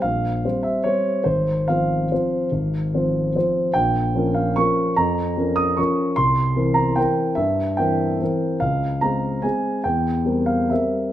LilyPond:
\new Staff \with { instrumentName = "Grand piano" } { \time 3/4 \key c \phrygian \tempo 4 = 146 << { f''4. e''8 des''4 | c''4 f''2~ | f''2. | g''4. f''8 des'''4 |
bes''4. ees'''8 des'''4 | c'''4. bes''8 g''4 | e''4 g''2 | f''4 bes''4 aes''4 |
g''4. f''8 e''4 | } \\ { bes,,4 <g c' c''>4 <g c' c''>4 | aes,,4 <f c' c''>4 <f c' c''>4 | aes,,4 <f c' c''>4 <f c' c''>4 | bes,,4 <f des' bes'>4 <f des' bes'>4 |
f,4 <f des' bes'>4 <f des' bes'>4 | c,4 <e c' bes'>4 <e c' bes'>4 | g,4 <e c' bes'>4 <e c' bes'>4 | des,4 <aes c' aes'>4 <aes c' aes'>4 |
e,4 <g c' bes'>4 <g c' bes'>4 | } >> }